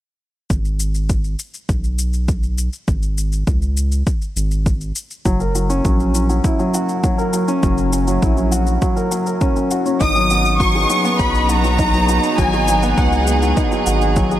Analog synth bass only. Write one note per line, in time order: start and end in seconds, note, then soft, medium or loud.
0.50 1.36 G#1 medium
1.69 2.69 B1 medium
2.88 3.44 G#1 medium
3.47 4.03 C#2 medium
4.36 4.92 G#1 medium
5.25 5.81 F#1 medium
5.85 6.41 A#1 medium
7.63 8.19 F#1 medium
8.22 8.78 A#1 medium
10.01 10.86 G#1 loud
11.19 12.20 B1 medium
12.38 12.94 G#1 medium
12.98 13.54 C#2 medium
13.87 14.40 G#1 loud